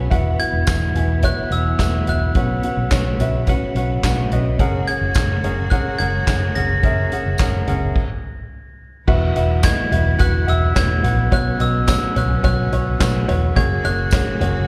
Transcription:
Already playing: F#3 B3 C#4 F#4 B4 F#5 G#5
0.10 E1 E3 E4 F#4 B4 F#5, kick, closed hi-hat
0.39 E4 F#4 B4 F#5 G#6, closed hi-hat
0.53 E1
0.67 E1 E4 F#4 B4 F#5, kick, snare, clap, closed hi-hat, tambourine
0.95 E1 E4 F#4 B4 G#5, closed hi-hat, floor tom
1.22 E4 F#4 B4 C#5 F#6, kick, closed hi-hat
1.51 E1 E4 F#4 B4 E5 E6, closed hi-hat
1.79 E1 E4 F#4 B4 F#5, kick, snare, clap, closed hi-hat, tambourine
2.07 E1 E4 F#4 B4 E5 F#6, closed hi-hat, floor tom
2.35 B1 B2 C#3 C#4 F#4 B4 F#5, kick, closed hi-hat
2.63 C#4 F#4 B4 F#5, closed hi-hat
2.77 B1
2.91 B1 C#4 F#4 B4 C#5, kick, snare, clap, closed hi-hat, tambourine
3.19 B1 C#4 F#4 B4 E5, closed hi-hat, floor tom
3.47 C#4 F#4 B4 F#5, kick, closed hi-hat
3.75 B1 C#4 F#4 B4 F#5, closed hi-hat
4.03 B1 C#4 F#4 B4 F#5, kick, snare, clap, closed hi-hat, tambourine
4.31 B1 C#4 F#4 B4 D#5, closed hi-hat, floor tom
4.59 F#1 F#3 G#3 A#3 C#4 F#4 G#4 A#4 F#5, kick, closed hi-hat
4.87 C#4 G#4 A#4 F#5 G#6, closed hi-hat
5.01 F#1
5.15 F#1 C#4 G#4 A#4 F#5, kick, snare, clap, closed hi-hat, tambourine
5.43 F#1 C#4 G#4 A#4 C#5, closed hi-hat
5.70 C#4 G#4 A#4 F#5 F#6, kick, closed hi-hat
5.99 F#1 C#4 G#4 A#4 F#5 G#6, closed hi-hat
6.27 F#1 C#4 G#4 A#4 F#5, kick, snare, clap, closed hi-hat, tambourine
6.55 F#1 C#4 G#4 A#4 F#5 A#6, closed hi-hat, floor tom
6.83 F#1 C#4 G#4 A#4 E5, kick, closed hi-hat
7.12 C#4 G#4 A#4 F#5, closed hi-hat
7.26 F#1
7.38 F#1 C#4 G#4 A#4 F#5, kick, snare, clap, closed hi-hat, tambourine
7.67 F#1 C#4 G#4 A#4 F#5, closed hi-hat, floor tom
7.96 kick, crash
9.07 E1 E3 F#3 B3 E4 F#4 B4 E5, kick, crash
9.35 E1 F#4 B4 E5, closed hi-hat
9.63 F#4 B4 D#5 G#6, kick, snare, clap, closed hi-hat, tambourine
9.91 E1 F#4 B4 E5, closed hi-hat, floor tom
10.06 floor tom
10.19 E1 F#4 B4 F#5 F#6, kick, closed hi-hat
10.47 E1 F#4 B4 E5 E6, closed hi-hat, floor tom
10.75 E1 F#4 B4 C#5 G#6, kick, snare, clap, closed hi-hat, tambourine
11.03 A#1 F#4 B4 F#5, closed hi-hat, floor tom
11.31 B1 B2 C#4 F#4 B4 C#5 F#6, kick, closed hi-hat
11.59 B1 F#4 B4 D#5 E6, closed hi-hat
11.87 F#4 B4 C#5 E6, kick, snare, clap, closed hi-hat, tambourine
12.15 B1 F#4 B4 C#5 F#6, closed hi-hat, floor tom
12.31 floor tom
12.43 B1 F#4 B4 C#5 F#6, kick, closed hi-hat
12.72 B1 F#4 B4 C#5, closed hi-hat, floor tom
12.99 B1 F#4 B4 C#5, kick, snare, clap, closed hi-hat, tambourine
13.28 E1 F#4 B4 C#5, closed hi-hat, floor tom
13.55 F#1 C#3 G#3 A#3 C#4 F#4 G#4 C#5 G#6, kick, closed hi-hat
13.84 F#1 A#3 C#4 F#4 G#4 C#5 F#6, closed hi-hat
14.11 A#3 C#4 F#4 G#4 C#5, kick, snare, clap, closed hi-hat, tambourine
14.40 F#1 A#3 C#4 F#4 G#4 C#5, closed hi-hat, floor tom
14.55 floor tom

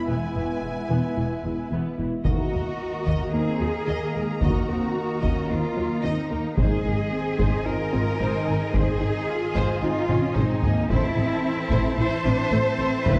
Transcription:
Already playing: G#3 B3 E4 E5
0.09 E1 E2 E3 B3 B4 G#5
0.36 E1 E2 E3 B3
0.63 E1 E2 G#3 E4
0.90 E1 E2 E3 B3
1.17 E1 E2 E3 E4
1.44 E1 E2 G#3 E4
1.71 E1 E2 E3 B3
1.98 E1 E2 E3 E4
2.25 D#2 D#3 A#3 D#4 F#4 A#4 D#5 A#5, taiko
2.52 D#2 A#3 A#4
3.05 D#2 D#3 D#5, taiko
3.32 D#2 A#3 C4 D#4 G#4 A#4
3.60 D#2 F#3 F#4
3.87 D#2 D#3 A#3 D#5
4.14 D#2 G#3 A#3 A#4
4.41 D#2 D#3 A#3 D#4 F#4 D#5, taiko
4.67 D#2 A#3 C4 A#4
4.95 A#3
5.21 D#2 D#3 C#4 D#5, taiko
5.49 D#2 A#3 C4 D#4 F4 A#4
5.76 D#2 F#3 A#3 F#4
6.02 D#2 D#3 C4 D#4 D#5
6.30 D#2 A#3 A#4
6.57 G#1 D#3 G#3 C4 D#4 G#4 C5 D#5 G#5, taiko
6.84 G#1 D#4 G#4
7.11 C4
7.38 G#1 G#3 D#4 C5, taiko
7.65 G#1 C4 D#4 F4 G#4 A#4
7.92 G#1 C4 D#4
8.19 G#1 G#3 D#4 C5
8.46 G#1 D#4 G#4
8.74 G#1 G#3 C4 D#4 G#4 C5, taiko
9.00 G#1 D#4 G#4
9.28 F4
9.55 G#1 G#3 C5, taiko
9.81 G#1 C4 D#4 F4 G#4
10.09 G#1 C4 C#4 D#4, taiko mid
10.35 G#1 G#3 C4 D#4 C5, taiko mid
10.63 G#1 A#3 D#4 G#4, taiko low
10.90 A1 E3 A3 C4 E4 A4 C5 E5 A5, taiko
11.17 A1 C4 E4 A4
11.70 A1 A3 C5, taiko
11.98 A1 C4 E4 A4 C5
12.24 A1 C4 D4 E4
12.52 A1 A3 C4 C5
12.79 A1 E4 A4
13.05 A1 A3 C4 E4 B4 C5, taiko

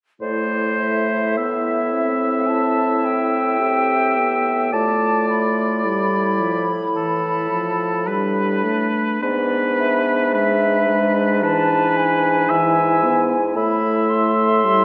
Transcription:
0.21 A2 A3 E4 C5 D5
0.80 E5
1.37 B3 E5
1.93 C4
2.48 E4 A5
3.04 G5
3.60 C4 G4
4.17 B3
4.73 A2 A3 F4 D5 A5
5.29 B5
5.85 G3 E4
6.41 F3
6.96 E3 A4
7.51 F3
8.07 G3 D4 B4
8.65 A3
9.21 G#2 B3 D4 B4 D5
9.79 E5
10.34 G#3 B4
10.90 G#3
11.43 E3 B4 A5
11.96 G#5
12.50 E3 E4 E5
13.04 B3
13.56 A2 A3 E4 E5 B5
14.09 C6
14.63 G3 E4

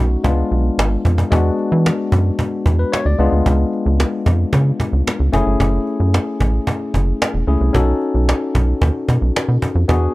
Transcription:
Already playing: B1 A3 C#4 D#4 F#4
0.24 C#2 G#3 B3 D4 F4, cajon bass
0.51 B1, cajon slap
0.78 G#1, cajon slap
1.05 F2, cajon bass
1.18 cajon bass
1.31 E2 G#3 B3 D4 F#4, cajon bass
1.59 cajon slap
1.72 E3
1.86 cajon slap
2.12 F#2, cajon bass
2.39 cajon bass
2.66 E2, cajon bass
2.79 B4
2.92 C#5, cajon slap
3.05 D2 D5
3.19 C#2 G#3 B3 D4 F4
3.32 D2
3.46 C#2, cajon bass
3.73 cajon slap
3.86 C#2
4.00 cajon slap
4.26 F2, cajon bass
4.53 C#3, cajon bass
4.80 cajon bass
4.93 C#2
5.07 cajon slap
5.20 C#2
5.32 F#1 A3 C#4 E4 G#4, cajon bass
5.47 G1
5.60 F#1, cajon bass
5.87 cajon slap
6.00 F#2
6.14 cajon slap
6.40 A1, cajon bass
6.67 cajon bass
6.94 F#1, cajon bass
7.22 cajon slap
7.34 E1
7.47 C#2 A3 C#4 E4 G#4
7.61 C2
7.73 B1 C#4 D#4 F#4 A4, cajon bass
8.02 cajon slap
8.14 B1
8.29 cajon slap
8.55 B1, cajon bass
8.81 D#2, cajon bass
9.08 B2, cajon bass
9.22 B1
9.36 cajon slap
9.48 B2
9.62 cajon bass
9.75 F2
9.88 E2 B3 D4 F#4 G#4, cajon bass

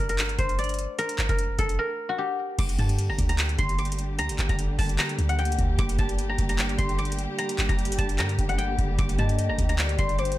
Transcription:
Already playing: G4 D5
0.00 G1
0.09 A#4, closed hi-hat
0.19 clap, closed hi-hat
0.29 closed hi-hat
0.38 G1 C5, kick, closed hi-hat
0.49 closed hi-hat
0.59 D5, closed hi-hat
0.64 closed hi-hat
0.69 closed hi-hat
0.74 closed hi-hat
0.79 closed hi-hat
0.99 A#4, closed hi-hat
1.09 closed hi-hat
1.19 G1, clap, closed hi-hat
1.29 F#1 A#4, kick, closed hi-hat
1.39 closed hi-hat
1.59 G1 A4, kick, closed hi-hat
1.69 closed hi-hat
1.79 A#4
2.09 F#4
2.18 G4
2.59 G1 D3 G3 A#3 G4 D6, kick, closed hi-hat, crash
2.69 closed hi-hat
2.79 G2 A5, kick, closed hi-hat
2.89 closed hi-hat
2.99 closed hi-hat
3.09 F#1 A#5
3.19 D2, kick, closed hi-hat
3.29 A#5, closed hi-hat
3.39 clap, closed hi-hat
3.49 closed hi-hat
3.59 G1 C6, kick, closed hi-hat
3.69 closed hi-hat
3.79 D6, closed hi-hat
3.85 closed hi-hat
3.92 closed hi-hat
3.99 closed hi-hat
4.19 D2 A#5, closed hi-hat
4.29 G1, closed hi-hat
4.39 G1, clap, closed hi-hat
4.49 G1 A#5, kick, closed hi-hat
4.59 closed hi-hat
4.79 G1 A5, kick, open hi-hat
4.89 closed hi-hat
4.99 A#5, clap, closed hi-hat
5.09 closed hi-hat
5.19 D2, closed hi-hat
5.29 F#5, closed hi-hat
5.39 G5, closed hi-hat
5.45 closed hi-hat
5.52 closed hi-hat
5.59 D2, kick, closed hi-hat
5.79 G1 D3 D6, kick, closed hi-hat
5.89 closed hi-hat
5.99 G1 A5, kick, closed hi-hat
6.09 closed hi-hat
6.19 closed hi-hat
6.29 A#5
6.39 G1, kick, closed hi-hat
6.49 A#5, closed hi-hat
6.59 clap, closed hi-hat
6.69 closed hi-hat
6.78 G1 C6, kick, closed hi-hat
6.89 closed hi-hat
6.99 D6, closed hi-hat
7.05 closed hi-hat
7.12 closed hi-hat
7.19 closed hi-hat
7.38 A#5, closed hi-hat
7.49 closed hi-hat
7.59 G1, clap, closed hi-hat
7.69 F#1 A#5, kick, closed hi-hat
7.79 closed hi-hat
7.85 closed hi-hat
7.92 closed hi-hat
7.98 G1 A5, kick, closed hi-hat
8.09 closed hi-hat
8.19 G2 A#5, clap, closed hi-hat
8.29 closed hi-hat
8.39 G1, kick, closed hi-hat
8.49 F#5, closed hi-hat
8.58 G5, closed hi-hat
8.78 G1, kick, closed hi-hat
8.99 G1 D6, kick, closed hi-hat
9.09 closed hi-hat
9.19 G2 D#5 A5, kick, closed hi-hat
9.29 closed hi-hat
9.39 closed hi-hat
9.49 F#1 A#5
9.59 D2, kick, closed hi-hat
9.69 A#5, closed hi-hat
9.78 D5, clap, closed hi-hat
9.89 closed hi-hat
9.99 G1 C6, kick, closed hi-hat
10.09 closed hi-hat
10.19 C5 D6, closed hi-hat
10.25 closed hi-hat
10.32 closed hi-hat

